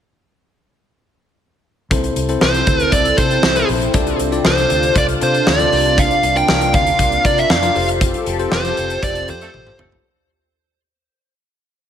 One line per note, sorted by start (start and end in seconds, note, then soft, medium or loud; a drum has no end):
1.91 2.09 C2 loud
1.91 2.63 C3 medium
1.91 7.72 C3 medium
1.91 2.26 C4 medium
1.91 5.68 C4 medium
1.91 2.26 E4 medium
1.91 3.92 E4 medium
1.91 3.92 A4 medium
1.91 2.27 A4 medium
1.91 2.27 C5 medium
1.91 kick loud
1.91 closed hi-hat medium
2.04 closed hi-hat soft
2.16 2.35 C2 medium
2.16 closed hi-hat medium
2.29 2.40 C4 medium
2.29 2.40 E4 medium
2.29 2.41 A4 medium
2.29 2.41 C5 medium
2.29 closed hi-hat soft
2.41 2.60 C2 medium
2.41 3.12 C4 medium
2.41 3.13 E4 medium
2.41 3.13 A4 medium
2.41 2.93 C5 medium
2.41 3.13 C5 medium
2.41 snare loud
2.54 closed hi-hat medium
2.67 2.86 D2 medium
2.67 kick loud
2.67 closed hi-hat medium
2.80 closed hi-hat medium
2.92 3.11 C2 loud
2.92 3.18 D5 medium
2.92 kick medium
2.92 closed hi-hat medium
3.05 closed hi-hat soft
3.18 3.36 C3 medium
3.18 3.53 C4 medium
3.18 3.54 E4 medium
3.18 3.54 A4 medium
3.18 3.66 C5 medium
3.18 3.54 C5 medium
3.18 kick medium
3.18 closed hi-hat medium
3.31 closed hi-hat soft
3.43 3.62 C2 medium
3.43 snare loud
3.55 3.91 C4 medium
3.55 3.91 E4 medium
3.55 3.91 A4 medium
3.55 3.92 C5 medium
3.55 closed hi-hat soft
3.69 3.87 A#1 medium
3.69 open hi-hat medium
3.82 closed hi-hat soft
3.93 4.13 C2 loud
3.93 4.66 C3 medium
3.93 4.29 D4 medium
3.93 7.72 D4 medium
3.93 5.70 F4 medium
3.93 4.30 F4 medium
3.93 4.30 A4 medium
3.93 4.30 D5 medium
3.93 kick loud
3.93 closed hi-hat medium
4.07 closed hi-hat soft
4.19 4.38 C2 medium
4.19 closed hi-hat medium
4.31 4.43 D4 medium
4.31 4.43 F4 medium
4.31 4.43 A4 medium
4.31 4.44 D5 medium
4.31 closed hi-hat soft
4.44 4.64 C2 loud
4.44 5.15 D4 medium
4.44 5.16 F4 medium
4.44 5.16 A4 medium
4.44 5.16 C5 medium
4.44 4.93 C5 medium
4.44 snare loud
4.58 closed hi-hat medium
4.70 4.89 D2 medium
4.70 closed hi-hat medium
4.83 closed hi-hat medium
4.95 5.14 C2 loud
4.95 5.04 D5 medium
4.95 kick loud
4.95 closed hi-hat medium
5.09 closed hi-hat medium
5.21 5.40 C3 loud
5.21 5.57 D4 medium
5.21 5.57 F4 medium
5.21 5.57 A4 medium
5.21 5.46 C5 medium
5.21 5.57 F5 medium
5.21 closed hi-hat medium
5.34 closed hi-hat soft
5.47 5.65 D2 medium
5.47 6.00 D5 medium
5.47 snare loud
5.59 5.71 D4 medium
5.59 5.71 F4 medium
5.59 5.72 A4 medium
5.59 5.72 D5 medium
5.59 closed hi-hat soft
5.72 6.09 C2 medium
5.72 6.45 C3 medium
5.72 7.74 A#3 medium
5.72 6.31 D4 medium
5.72 6.31 F4 medium
5.72 7.74 F4 medium
5.72 6.32 A#4 medium
5.72 6.32 D5 medium
5.72 open hi-hat medium
5.85 closed hi-hat soft
5.98 6.34 F5 loud
5.98 kick loud
5.98 closed hi-hat medium
6.11 closed hi-hat soft
6.23 6.42 C2 medium
6.23 closed hi-hat medium
6.35 6.47 D4 medium
6.35 6.47 F4 medium
6.35 6.48 A#4 medium
6.35 6.48 F5 medium
6.35 6.72 G5 loud
6.35 closed hi-hat soft
6.48 6.74 C2 medium
6.48 7.19 D4 medium
6.48 7.19 F4 medium
6.48 7.20 A#4 medium
6.48 7.20 F5 medium
6.48 snare loud
6.61 closed hi-hat medium
6.74 6.92 D2 medium
6.74 7.22 F5 loud
6.74 kick loud
6.74 closed hi-hat medium
6.87 closed hi-hat medium
6.99 7.17 C2 medium
6.99 kick medium
6.99 closed hi-hat medium
7.12 closed hi-hat soft
7.24 7.43 C3 loud
7.24 7.60 D4 medium
7.24 7.60 F4 medium
7.24 7.60 A#4 medium
7.24 7.60 D5 medium
7.24 7.39 D5 medium
7.24 kick loud
7.24 closed hi-hat medium
7.38 7.51 E5 medium
7.38 closed hi-hat soft
7.50 7.69 F2 medium
7.50 7.87 F5 medium
7.50 snare loud
7.62 7.75 D4 medium
7.62 7.73 F4 medium
7.62 7.76 A#4 medium
7.62 7.76 D5 medium
7.62 closed hi-hat medium
7.75 8.12 F1 medium
7.75 10.03 F3 medium
7.75 10.03 C4 medium
7.75 8.34 F4 medium
7.75 8.34 G4 medium
7.75 10.03 G4 medium
7.75 8.35 A4 medium
7.75 10.03 A4 medium
7.75 8.35 C5 medium
7.75 open hi-hat medium
7.89 closed hi-hat soft
8.01 kick loud
8.01 closed hi-hat medium
8.14 closed hi-hat soft
8.26 8.45 F1 loud
8.26 closed hi-hat medium
8.39 8.50 F4 medium
8.39 8.50 G4 medium
8.39 8.50 A4 medium
8.39 8.51 C5 medium
8.39 closed hi-hat soft
8.51 8.71 F1 medium
8.51 9.22 F4 medium
8.51 9.23 G4 medium
8.51 9.23 A4 medium
8.51 9.23 C5 medium
8.51 9.04 C5 medium
8.51 snare loud
8.65 closed hi-hat medium
8.77 8.96 F1 medium
8.77 closed hi-hat medium
8.90 closed hi-hat medium
9.03 9.30 F1 loud
9.03 9.27 D5 loud
9.03 kick medium
9.03 closed hi-hat medium
9.15 closed hi-hat soft
9.28 9.47 F2 medium
9.28 9.63 F4 medium
9.28 9.64 G4 medium
9.28 9.64 A4 medium
9.28 9.64 C5 medium
9.28 9.77 C5 medium
9.28 closed hi-hat medium
9.41 9.49 F3 medium
9.41 9.49 A3 loud
9.41 9.49 C4 medium
9.41 9.49 A4 loud
9.41 closed hi-hat soft
9.54 9.72 A1 loud
9.54 high tom medium
9.66 10.02 F4 medium
9.66 10.02 G4 medium
9.66 10.02 A4 medium
9.66 10.03 C5 medium
9.66 mid tom medium
9.79 9.98 G1 medium
9.79 9.96 F3 medium
9.79 9.96 A3 medium
9.79 9.96 C4 loud
9.79 9.96 A4 loud
9.79 mid tom medium
9.92 floor tom medium